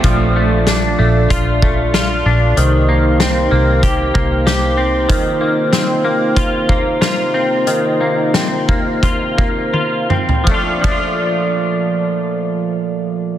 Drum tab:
RD |----------------|----------------|----------------|----------------|
HH |x---x---x---x---|x---x---x---x---|x---x---x---x---|x---x---x-------|
SD |----o-------o---|----o-------o---|----o-------o---|----o-----------|
T1 |----------------|----------------|----------------|------------o---|
T2 |----------------|----------------|----------------|--------------o-|
FT |----------------|----------------|----------------|---------------o|
BD |o-------o-o-----|--------o-o-----|o-------o-o-----|------o-o-o-----|

RD |x-x-------------|
HH |----------------|
SD |----------------|
T1 |----------------|
T2 |----------------|
FT |----------------|
BD |o-o-------------|